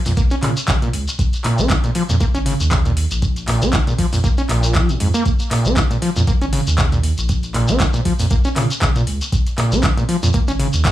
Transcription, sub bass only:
0.06 F2
0.17 A#1
0.43 A#2
0.82 A#2
0.94 C#2
1.59 A#1
2.09 F2
2.35 G#1
2.60 D#2
3.11 A#1
3.62 A#1
4.13 F2
4.49 A#1
5.00 F2
5.65 A#1
6.16 F2
6.42 G#1
6.67 D#2
7.18 A#1
7.69 A#1
8.19 F2
8.31 A#1
8.56 A#2
8.96 A#2
9.07 C#2
9.72 A#1
10.23 F2
10.48 G#1
10.74 D#2

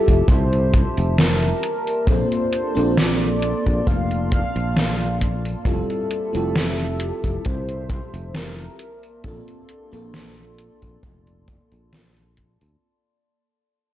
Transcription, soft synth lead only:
Already playing: A4
0.29 C5
1.18 A#4
2.08 C5
2.98 D5
3.88 F5
4.33 F5
5.66 A4
7.46 C5
8.36 A#4
9.25 A4

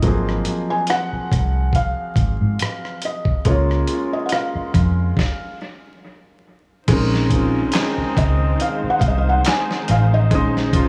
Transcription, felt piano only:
Already playing: D#5
0.70 G#5
0.90 F#5
1.76 F5
3.05 D#5
3.47 C#5
4.13 D#5
4.26 F#5
4.32 F5
8.18 D#5
8.61 F5
8.90 F#5
8.99 F5
9.08 D#5
9.18 F5
9.29 F#5
9.47 G#5
9.91 F5
10.14 D#5

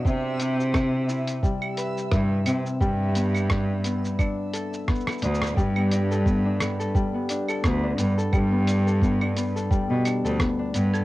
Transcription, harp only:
Already playing: B2 D3 B3 D4 F#4 B4
0.05 C3
0.40 E4
0.74 C4
1.09 E4
1.43 G3
1.78 B4
2.12 E4
2.46 C4
2.81 G3
3.16 B3
3.50 D4
3.85 B3
4.19 D4
4.53 A4
4.88 B3
5.22 D4
5.57 G3
5.76 B3
5.91 D4
6.11 A4
6.26 B3
6.45 D4
6.60 B3
6.79 A4
6.95 G3
7.14 B3
7.29 D4
7.49 A4
7.64 B3
7.83 D4
7.98 B3
8.18 A4
8.33 G3
8.52 B3
8.67 D4
8.87 A4
9.02 B3
9.21 D4
9.36 B3
9.56 A4
9.71 G3
9.90 B3
10.05 D4
10.25 A4
10.40 B3
10.59 D4
10.74 B3
10.94 A4

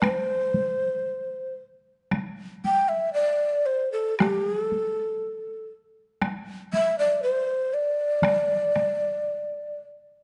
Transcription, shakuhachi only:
0.01 C5
2.65 G5
2.88 E5
3.13 D5
3.66 C5
3.92 A4
4.18 G4
4.45 G#4
4.62 A4
6.73 E5
6.99 D5
7.23 C5
7.74 D5

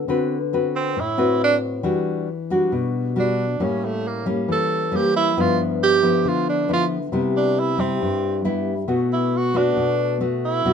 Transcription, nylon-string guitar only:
0.08 D3 C4 F#4 B4
0.53 C4 F#4 B4
0.97 A2
1.18 C4 F#4 B4
1.83 E3 G3 D4 F#4
2.50 G3 D4 F#4
2.72 B2
3.16 G3 D4 F#4
3.60 A2 G3 A#3 C#4
4.26 G3 A#3 C#4
4.48 E3
4.92 G3 A#3 C#4
5.37 G2 F3 B3 E4
6.03 F3 B3 E4
6.25 D3
6.69 F3 B3 E4
7.12 C3 G3 B3 E4
7.78 G3 E4
8.02 G2
8.45 G3 B3 E4
8.88 B2 A3 B3 F#4
9.54 A3 B3 F#4
9.76 B2
10.20 A3 B3 F#4
10.65 B2 G3 D4 F#4

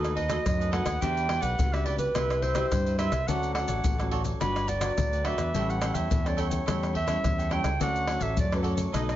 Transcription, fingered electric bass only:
Already playing: D#2
0.46 F#2
0.85 D#2
1.02 E2
1.42 B1
1.59 C#2
2.15 C2
2.72 G2
3.11 C2
3.28 D2
3.68 A1
3.84 A1
4.41 G1
4.98 D2
5.38 E2
5.55 A1
5.95 E2
6.11 E2
6.68 E2
7.24 E2
7.64 C#2
7.81 D2
8.20 A1
8.37 F#2
8.93 B1

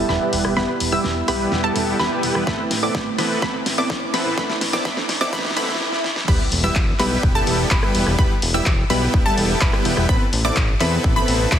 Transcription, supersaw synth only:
0.09 G3 B3 E4 G4 B4
0.57 G3 B3 E4 G4 B4
0.92 G3 B3 E4 G4 E5
1.28 G3 B3 E4 G4 B4
1.64 G3 B3 E4 G4 A4
1.99 G3 B3 E4 G4 B4
2.47 B3 C4 E4 A4 B4
2.83 B3 C4 E4 A4 D5
3.18 B3 C4 E4 A4 B4
3.42 B3 C4 E4 A4 B4
3.78 B3 C4 E4 A4 D5
4.14 B3 C4 E4 A4 B4
4.37 B3 C4 E4 A4 B4
4.73 B3 C4 E4 A4 D5
4.85 B3 C4 E4 A4 B4
5.21 B3 C4 E4 A4 D5
5.33 B3 C4 E4 A4 B4
5.57 B3 C4 E4 A4 B4
6.28 G3 B3 E4 G4 B4
6.64 G3 B3 E4 G4 E5
6.99 G3 B3 E4 G4 B4
7.35 G3 B3 E4 G4 A4
7.71 G3 B3 E4 G4 B4
8.19 G3 B3 E4 G4 B4
8.54 G3 B3 E4 G4 E5
8.90 G3 B3 E4 G4 B4
9.26 G3 B3 E4 G4 A4
9.61 G3 B3 E4 G4 B4
10.09 B3 C4 E4 A4 B4
10.45 B3 C4 E4 A4 D5
10.80 B3 C4 E4 A4 B4
11.16 B3 C4 E4 A4 B4
11.52 B3 C4 E4 A4 B4

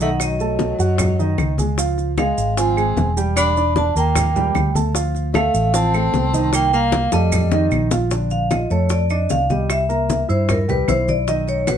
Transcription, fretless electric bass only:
Already playing: B1
0.79 F#2
1.38 C#2
2.38 G#1
2.97 E1
3.96 D#2
4.55 D2
5.54 A1
6.14 C2
7.13 F2
7.72 A#1
8.70 F2
9.30 C2
10.29 G2
10.69 C2
10.88 B1

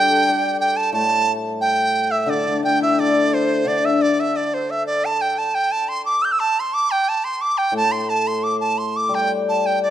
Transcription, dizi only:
Already playing: G5
0.60 G5
0.77 A5
0.93 A5
1.61 G5
2.11 E5
2.30 D5
2.64 G5
2.82 E5
3.00 D5
3.34 C5
3.68 D5
3.85 E5
4.02 D5
4.20 E5
4.36 D5
4.54 C5
4.70 E5
4.87 D5
5.05 A5
5.21 G5
5.38 A5
5.55 G5
5.72 A5
5.89 C6
6.05 D6
6.22 E6 G6
6.32 E6
6.40 A5
6.60 C6
6.74 D6
6.91 G5
7.09 A5
7.24 C6
7.41 D6
7.58 G5
7.77 A5
7.92 C6
8.09 A5
8.27 C6
8.43 D6
8.60 A5
8.78 C6
8.96 D6
9.15 G5
9.49 A5
9.66 G5
9.83 D5

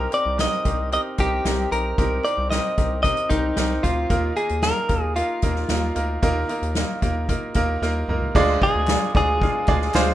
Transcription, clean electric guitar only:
Already playing: A#4
0.14 D5
0.41 D#5
0.93 D#5
1.20 G4
1.72 A#4
2.25 D5
2.50 D#5
3.03 D#5
3.30 D#4
3.83 F4
4.37 G#4
4.63 A#4
5.16 F4
8.63 G#4
9.17 G#4

